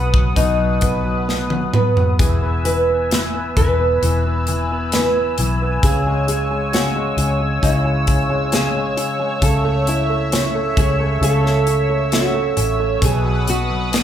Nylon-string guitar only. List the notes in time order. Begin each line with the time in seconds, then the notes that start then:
Already playing: F#4
0.37 D#4
1.74 B4
2.20 G#4
2.65 B4
3.57 B4
4.93 B4
5.84 G#4
6.29 G#4
6.74 F#4
7.64 E4
8.54 G#4
9.43 A4
9.88 E4
10.79 G#4
11.24 A4
12.14 F#4
13.05 G#4
13.50 F#4